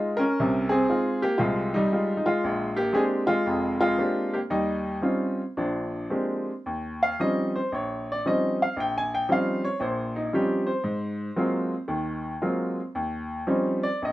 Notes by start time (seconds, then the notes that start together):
Already playing: G#3 D#4 F4
0.17 C#4 A#4
0.40 C2 C3
0.69 C4 G#4
0.89 G#3 D#4 F4
1.22 A#3 G4
1.38 C2 C3 G#3 F4
1.74 G3 D#4
1.92 G#3 D#4 F4
2.17 D#4
2.26 G#3 F4
2.44 A#1
2.77 A#3 G4
2.93 G#3 A#3 C4 D4 G4 G#4
3.27 G#3 F4
3.46 F1 F2
3.81 G#3 F4
3.98 G#3 A#3 C4 D4 G4
4.34 A#3 G4
4.50 D#2 G3 D#4
5.02 G3 C4 C#4 D#4 F4
5.57 A#1 F3 D4
6.10 G#3 A#3 C4 D4 G4
6.66 D#2
7.03 F5
7.20 F3 G3 C4 C#4 D#4 D#5
7.56 C5
7.72 A#1 C#5
8.12 D5
8.26 F3 G3 C4 C#4 D#4 D#5
8.62 F5
8.77 A#1 G5
8.98 G#5
9.14 G5
9.29 F3 G3 C4 C#4 D#4 F5
9.64 C#5
9.80 A#1 A#2 C5
10.16 D#4
10.33 F3 G3 C4 C#4 D#4 G4
10.67 C5
10.84 G#2
11.36 F#3 G#3 A#3 C4 F4
11.88 D#2 D#3
12.42 F#3 G#3 A#3 C4 F4
12.95 D#2
13.47 F3 G3 C4 C#4 D#4
13.83 D5
14.02 A#1 D#5